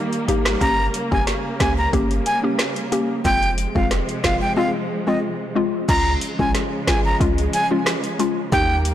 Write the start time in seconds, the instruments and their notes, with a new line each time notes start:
Already playing: string section D#3 G3 A#3
0.13 closed hi-hat
0.28 808-style bass G#1, synth pluck A#3 D#4 G4, closed hi-hat
0.45 cross-stick, snare
0.61 808-style bass G1, string section C#3, synth pluck A#3 C#4 G4, flute A#5, kick, closed hi-hat
0.94 closed hi-hat
1.11 808-style bass F1, synth pluck A#3 C#4 G4, flute G#5, kick
1.27 snare, closed hi-hat
1.60 808-style bass C#2, synth pluck A#3 C#4 G4, flute G#5, kick, cross-stick, snare, closed hi-hat
1.78 flute A#5
1.93 808-style bass G1, synth pluck A#3 C#4 G4, kick, closed hi-hat
2.11 closed hi-hat
2.26 flute G#5, closed hi-hat
2.43 synth pluck A#3 C#4 G4
2.59 cross-stick, snare, closed hi-hat
2.76 closed hi-hat
2.92 synth pluck A#3 C#4 G4, closed hi-hat
3.25 808-style bass F1, string section C3 F3 G#3, synth pluck G#3 C4 F4, flute G5, kick, closed hi-hat
3.43 closed hi-hat
3.58 closed hi-hat
3.75 808-style bass F1, synth pluck G#3 C4 F4, flute F5, kick
3.91 cross-stick, snare, closed hi-hat
4.09 closed hi-hat
4.24 808-style bass F1, synth pluck G#3 C4 F4, flute F5, kick, cross-stick, snare, closed hi-hat
4.41 flute G5
4.57 synth pluck G#3 C4 F4, flute F5
5.07 synth pluck G#3 C4 F4, flute D#5
5.55 synth pluck G#3 C4 F4
5.88 808-style bass C#2, string section C#3 F3 G#3, synth pluck G#3 C#4 F4, flute A#5, kick, closed hi-hat, crash
6.21 closed hi-hat
6.39 808-style bass A#1, synth pluck G#3 C#4 F4, flute G#5, kick
6.55 snare, closed hi-hat
6.87 808-style bass G#1, synth pluck G#3 C#4 F4, flute G#5, kick, cross-stick, snare, closed hi-hat
7.05 flute A#5
7.20 808-style bass C#2, synth pluck G#3 C#4 F4, kick, closed hi-hat
7.38 closed hi-hat
7.53 flute G#5, closed hi-hat
7.71 synth pluck G#3 C#4 F4
7.86 cross-stick, snare, closed hi-hat
8.04 closed hi-hat
8.19 synth pluck G#3 C#4 F4, closed hi-hat
8.52 808-style bass D#2, string section D#3 G3 A#3, synth pluck A#3 D#4 G4, flute G5, kick, closed hi-hat
8.85 closed hi-hat